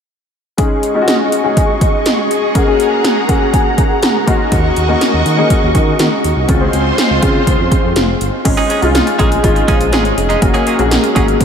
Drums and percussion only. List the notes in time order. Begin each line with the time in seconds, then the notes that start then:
0.58 kick, closed hi-hat
0.83 closed hi-hat
1.08 snare, closed hi-hat
1.32 closed hi-hat
1.57 kick, closed hi-hat
1.81 kick, closed hi-hat
2.06 snare, closed hi-hat
2.31 closed hi-hat
2.55 kick, closed hi-hat
2.80 closed hi-hat
3.04 snare, closed hi-hat
3.29 kick, closed hi-hat
3.54 kick, closed hi-hat
3.78 kick, closed hi-hat
4.02 snare, closed hi-hat
4.27 kick, closed hi-hat
4.52 kick, closed hi-hat
4.76 closed hi-hat
5.01 snare, closed hi-hat
5.26 closed hi-hat
5.50 kick, closed hi-hat
5.75 kick, closed hi-hat
5.99 snare, closed hi-hat
6.24 closed hi-hat
6.49 kick, closed hi-hat
6.73 closed hi-hat
6.98 snare, closed hi-hat
7.23 kick, closed hi-hat
7.47 kick, closed hi-hat
7.72 kick, closed hi-hat
7.96 snare, closed hi-hat
8.21 closed hi-hat
8.45 kick, closed hi-hat, crash
8.57 closed hi-hat
8.70 closed hi-hat
8.82 closed hi-hat
8.95 snare, closed hi-hat
9.07 closed hi-hat
9.19 kick, closed hi-hat
9.32 closed hi-hat
9.44 kick, closed hi-hat
9.56 closed hi-hat
9.68 kick, closed hi-hat
9.81 closed hi-hat
9.93 snare, closed hi-hat
10.05 closed hi-hat
10.18 closed hi-hat
10.30 closed hi-hat
10.42 kick, closed hi-hat
10.54 closed hi-hat
10.67 closed hi-hat
10.79 closed hi-hat
10.91 snare, closed hi-hat
11.04 closed hi-hat
11.16 kick, closed hi-hat
11.28 closed hi-hat
11.40 kick, closed hi-hat